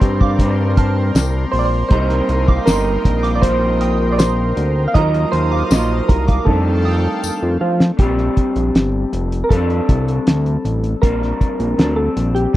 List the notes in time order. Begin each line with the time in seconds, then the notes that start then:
Already playing: A#2 G3 C4 D4 A#4 C5 D5 G5 C6
0.01 G2, kick, closed hi-hat
0.21 F5 D6, kick
0.37 A#2 G3, kick, closed hi-hat
0.43 C4 D4
0.77 A5 F6, kick, closed hi-hat
1.15 C2, snare, closed hi-hat, tambourine
1.52 A#1 C5, open hi-hat
1.59 D5
1.65 C5
1.89 C2 C3 G3 A#3 C4 D#4 C5 D#5 G5 A#5, kick, closed hi-hat
1.93 D#4 A#4
2.10 snare, closed hi-hat
2.29 C2, closed hi-hat
2.48 F5 D6, kick
2.66 G1 C3 G3 A#3 A#4 D#5 C6, snare, closed hi-hat, tambourine
2.70 D#4
3.05 A#1, kick, closed hi-hat
3.23 F5 D6, closed hi-hat
3.35 D5
3.41 C3 G3 C5, kick, closed hi-hat
3.47 A#3 D#4
3.81 G5 D#6, closed hi-hat
4.12 D5
4.18 C5, snare, closed hi-hat, tambourine
4.57 D2, closed hi-hat
4.88 F5
4.93 D#2 D#3 F#3 A#3 D#4 F4 D#5 F5 A#5 D#6, kick, closed hi-hat
4.97 F4 A#4
5.14 closed hi-hat
5.32 D#2 C5, closed hi-hat
5.52 F5 D6
5.70 A#1 D#3 F#3 A#3 F4 D#5 C6, snare, closed hi-hat, tambourine
6.08 C2 A#4, kick, closed hi-hat
6.28 F5 D6, kick, closed hi-hat
6.44 F2 D#3 G3 D4 D#4 A4 F5 G5 A5, kick
6.50 A3 D4 A4
6.85 G5 D#6
7.23 F2, tambourine
7.43 F2
7.61 F3 F4
7.80 snare
7.97 A#1 A#2 G3 G4, kick, closed hi-hat
8.01 C4 D4
8.18 snare
8.37 kick, closed hi-hat
8.56 A#1, closed hi-hat
8.75 G1, snare, closed hi-hat
9.13 F1, closed hi-hat
9.32 closed hi-hat
9.44 A#4
9.49 F2 G3 A4, kick, closed hi-hat
9.53 C4 D4
9.70 closed hi-hat
9.89 C2, kick, closed hi-hat
10.08 closed hi-hat
10.27 D2, snare, closed hi-hat
10.46 closed hi-hat
10.65 A1, closed hi-hat
10.84 closed hi-hat
11.02 A#1 A#2 G3 C4 D4 A#4, kick, closed hi-hat
11.22 snare
11.41 kick, closed hi-hat
11.60 A#1, closed hi-hat
11.77 D2 A#2 G3 C4 D4, snare, closed hi-hat
11.96 A4
12.17 A#1, closed hi-hat
12.35 G4, closed hi-hat
12.53 A#2